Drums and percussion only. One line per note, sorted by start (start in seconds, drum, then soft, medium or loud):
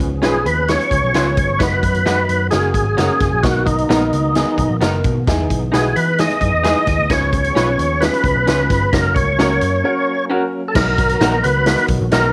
0.00 kick medium
0.00 closed hi-hat medium
0.23 snare medium
0.23 closed hi-hat medium
0.46 closed hi-hat medium
0.68 snare loud
0.68 closed hi-hat medium
0.81 closed hi-hat soft
0.91 kick medium
0.91 closed hi-hat medium
1.14 snare loud
1.14 closed hi-hat medium
1.37 kick loud
1.37 closed hi-hat medium
1.60 kick loud
1.60 snare loud
1.60 closed hi-hat medium
1.83 kick medium
1.83 closed hi-hat medium
1.94 closed hi-hat medium
2.06 snare medium
2.06 closed hi-hat medium
2.29 closed hi-hat medium
2.51 snare loud
2.51 closed hi-hat medium
2.74 kick medium
2.74 closed hi-hat medium
2.98 snare loud
2.98 closed hi-hat medium
3.20 kick loud
3.20 snare soft
3.20 closed hi-hat medium
3.43 kick loud
3.43 snare loud
3.43 closed hi-hat medium
3.67 kick medium
3.67 closed hi-hat medium
3.78 closed hi-hat soft
3.90 snare loud
3.90 closed hi-hat medium
4.13 closed hi-hat medium
4.35 snare loud
4.35 closed hi-hat medium
4.58 kick medium
4.58 closed hi-hat medium
4.81 snare loud
4.81 closed hi-hat medium
5.04 kick medium
5.04 closed hi-hat medium
5.27 kick loud
5.27 snare loud
5.27 closed hi-hat medium
5.50 kick medium
5.50 closed hi-hat medium
5.74 snare loud
5.74 closed hi-hat medium
5.96 closed hi-hat medium
6.18 snare loud
6.18 closed hi-hat medium
6.30 closed hi-hat medium
6.41 kick medium
6.41 closed hi-hat medium
6.64 snare loud
6.64 closed hi-hat medium
6.87 kick loud
6.87 snare soft
6.87 closed hi-hat medium
7.10 kick loud
7.10 snare loud
7.10 closed hi-hat medium
7.33 kick medium
7.33 closed hi-hat medium
7.44 closed hi-hat medium
7.56 snare loud
7.56 closed hi-hat medium
7.79 closed hi-hat medium
8.01 snare loud
8.01 closed hi-hat medium
8.14 closed hi-hat medium
8.24 kick medium
8.24 closed hi-hat medium
8.47 snare loud
8.47 closed hi-hat medium
8.70 kick loud
8.70 snare soft
8.70 closed hi-hat medium
8.93 kick loud
8.93 snare loud
8.93 closed hi-hat medium
9.16 kick loud
9.16 closed hi-hat medium
9.39 snare loud
9.39 closed hi-hat medium
9.61 closed hi-hat medium
10.75 kick loud
10.75 snare loud
10.75 crash medium
10.98 kick loud
10.98 closed hi-hat medium
11.09 closed hi-hat medium
11.21 snare loud
11.21 closed hi-hat medium
11.44 closed hi-hat medium
11.66 snare loud
11.66 closed hi-hat medium
11.78 closed hi-hat medium
11.88 kick medium
11.88 closed hi-hat medium
12.11 snare loud
12.11 closed hi-hat medium